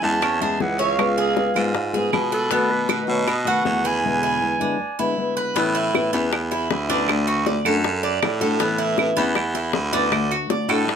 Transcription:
Already playing: E4
0.02 E2 G#3 C#4 E4 A5
0.22 C#4, muted nylon-string guitar stroke, high bongo, claves
0.41 G#3 C#4 E4 G#4 A5, high bongo
0.60 C#2 E3 G#3 C#4 E4 F#5, high bongo, low bongo
0.79 C#5 F5, high bongo
0.98 C#3 G#3 B3 F4 G#4, high bongo, claves
1.18 G#4, high bongo
1.37 G#3 B3 F4 G#4, high bongo
1.55 G#2 G#3 B3 F4 G#4, claves
1.75 muted nylon-string guitar stroke, high bongo
1.93 G#3 B3 F4 G#4, high bongo
2.12 B2 G#3 B3 F4 G#4, high bongo, low bongo, claves
2.32 A4 B4, high bongo
2.51 B2 D#3 A3 B3 F#4, high bongo
2.70 B4, high bongo
2.89 D#3 A3 B3 D#4 F#4, high bongo, claves
3.08 B2 D#3 A3 B3 F#4 C#5
3.27 B3 D#5, muted nylon-string guitar stroke, high bongo, claves
3.45 D#3 A3 B3 F#4 F#5, high bongo
3.65 E2 D#3 A3 B3 F#4, high bongo, low bongo
3.85 B4 G#5, high bongo
4.04 B2 D3 G#3 B3 E4
4.23 E4
4.41 D3 G#3 B3 E4
4.60 D3 G#3 B3 D4 E4
4.79 muted nylon-string guitar stroke
4.99 D3 G#3 B3 E4
5.17 D3 G#3 B3 E4
5.37 B4
5.56 A2 E3 B3 C#4 E4, high bongo
5.75 E4
5.94 E3 B3 C#4 E4, high bongo, claves
6.12 E2 B3 C#4 E4, high bongo
6.32 muted nylon-string guitar stroke, high bongo, claves
6.51 E4, high bongo
6.70 D2, high bongo, low bongo
6.89 B3 C#4 D4 E4, high bongo
7.07 D3 A3 D4 F#4, high bongo, claves
7.27 F#4
7.46 D3 A3 D4 F#4 D5, high bongo
7.65 F#2 A3 D4 F#4 A4, high bongo, claves
7.84 muted nylon-string guitar stroke, high bongo
8.03 D5, high bongo
8.22 A2, high bongo, low bongo, claves
8.41 A3 D4 F#4 A4, high bongo
8.60 E3 B3 C#4 E4, high bongo
8.78 E4
8.98 E3 B3 C#4 E4, high bongo, claves
9.17 E2 B3 C#4 E4, high bongo
9.35 muted nylon-string guitar stroke, high bongo, claves
9.55 E4, high bongo
9.73 D2, high bongo, low bongo
9.92 B3 C#4 D4 E4, high bongo
10.11 D3 A3 D4 F#4, high bongo, claves
10.31 F#4
10.49 D3 A3 D4 F#4 D5, high bongo
10.69 A2 A3 D4 F#4 A4, high bongo, claves
10.87 muted nylon-string guitar stroke, high bongo

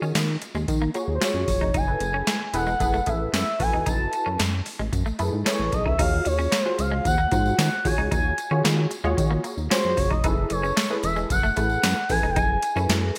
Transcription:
Already playing: F4 F#4 G#4 C#5
0.02 D#3 C#4, tambourine
0.15 D#3 A#3, snare, clap, closed hi-hat, tambourine
0.42 muted clean electric guitar stroke, closed hi-hat, tambourine
0.55 D#2 G#3, tambourine
0.68 D#3, muted clean electric guitar stroke, kick, closed hi-hat, tambourine
0.82 A#3
0.94 A#3 F4 F#4 G#4 C#5, closed hi-hat, tambourine
1.08 D#2
1.15 C5
1.21 C#4 F4 F#4 G#4 C#5, snare, clap, closed hi-hat, tambourine
1.34 F#2
1.48 F#1, muted clean electric guitar stroke, kick, open hi-hat, tambourine
1.61 F1 D#4, kick
1.74 F#1 D#4 G#5, kick, closed hi-hat, tambourine
1.87 E4 G#4 A4 B4
2.00 F#1, muted clean electric guitar stroke, closed hi-hat, tambourine
2.14 C#4
2.27 A3, snare, clap, closed hi-hat, tambourine
2.53 E1 E4 G#4 A4 B4 F#5, muted clean electric guitar stroke, closed hi-hat, tambourine
2.66 G#3, tambourine
2.80 F#1 E4 G#4 A4 B4, muted clean electric guitar stroke, kick, closed hi-hat, tambourine
2.94 A3, tambourine
3.06 A1 A3 E4 G#4 A4 B4 E5, kick, closed hi-hat, tambourine
3.33 F#2 C#4 E5, snare, clap, closed hi-hat, tambourine
3.59 A1 E4 F#4 A4 B4 G#5, muted clean electric guitar stroke, kick, open hi-hat, tambourine
3.73 E1 D#4
3.81 G#5
3.86 F#1 D#4 A5, kick, closed hi-hat, tambourine
4.13 muted clean electric guitar stroke, closed hi-hat, tambourine
4.26 F#2 C#4
4.39 F#2 A3, snare, clap, closed hi-hat, tambourine
4.65 muted clean electric guitar stroke, open hi-hat, tambourine
4.79 A1 G#3
4.93 F#2, muted clean electric guitar stroke, kick, closed hi-hat, tambourine
5.06 A3, tambourine
5.19 F#2 A3 E4 G#4 A4 B4, closed hi-hat, tambourine
5.33 G#2
5.45 C#4 E4 G#4 A4 B4 C#5, snare, clap, closed hi-hat, tambourine
5.59 A1
5.72 B1 D#5, muted clean electric guitar stroke, kick, closed hi-hat, tambourine
5.86 C#2 D#4 E5, kick
5.99 D#2 D#4 F4 F#4 G#4 C#5 F5, kick, closed hi-hat, crash, tambourine
6.25 D#2 C#5, muted clean electric guitar stroke, closed hi-hat, tambourine
6.39 C#4, tambourine
6.52 A#3, snare, clap, closed hi-hat, tambourine
6.63 F4 F#4 G#4 C5
6.78 C#2 F5, muted clean electric guitar stroke, closed hi-hat, tambourine
6.92 G#3
7.05 D#2 F#5, muted clean electric guitar stroke, kick, closed hi-hat, tambourine
7.18 A#3
7.31 G#2 A#3 F4 F#4 G#4 C5 F#5, kick, closed hi-hat, tambourine
7.46 tambourine
7.58 D#3 C#4 F#5, snare, clap, closed hi-hat, tambourine
7.85 D#2 F4 F#4 G#4 C#5 G#5, muted clean electric guitar stroke, kick, open hi-hat, tambourine
7.98 C#2 D#4
8.11 D#2 D#4 G#5, kick, closed hi-hat, tambourine
8.38 muted clean electric guitar stroke, closed hi-hat, tambourine
8.51 D#3 C#4 F4 F#4 G#4 C#5
8.64 D#3 A#3, snare, clap, closed hi-hat, tambourine
8.91 muted clean electric guitar stroke, closed hi-hat, tambourine
9.04 D#2 G#3 F4 F#4 G#4 C#5
9.17 D#3, muted clean electric guitar stroke, kick, closed hi-hat, tambourine
9.31 A#3
9.44 A#3, closed hi-hat, tambourine
9.57 D#2, tambourine
9.70 C#4 F4 F#4 G#4 C5 C#5, snare, clap, closed hi-hat, tambourine
9.84 F#2
9.97 F#1 C#5, muted clean electric guitar stroke, kick, open hi-hat, tambourine
10.11 F1 D#4 D#5, kick
10.24 F#1 D#4 E4 G#4 A4 B4 E5, kick, closed hi-hat, tambourine
10.50 F#1 C#5, muted clean electric guitar stroke, closed hi-hat, tambourine
10.63 C#4, tambourine
10.77 A3, snare, clap, closed hi-hat, tambourine
10.90 E4 G#4 A4 B4
11.03 E1 E5, muted clean electric guitar stroke, closed hi-hat, tambourine
11.16 G#3, tambourine
11.30 F#1 F#5, muted clean electric guitar stroke, kick, closed hi-hat, tambourine
11.43 A3, tambourine
11.56 A1 A3 E4 G#4 A4 B4 F#5, kick, closed hi-hat, tambourine
11.69 tambourine
11.83 F#2 C#4, snare, clap, closed hi-hat, tambourine
12.09 A1 E4 G#4 A4 B4 G#5, muted clean electric guitar stroke, kick, open hi-hat, tambourine
12.23 E1 D#4
12.31 G5
12.36 F#1 D#4 G#5, kick, closed hi-hat, tambourine
12.62 muted clean electric guitar stroke, closed hi-hat, tambourine
12.76 F#2 C#4 E4 G#4 A4 B4, tambourine
12.89 F#2 A3, snare, clap, closed hi-hat, tambourine
13.15 tambourine

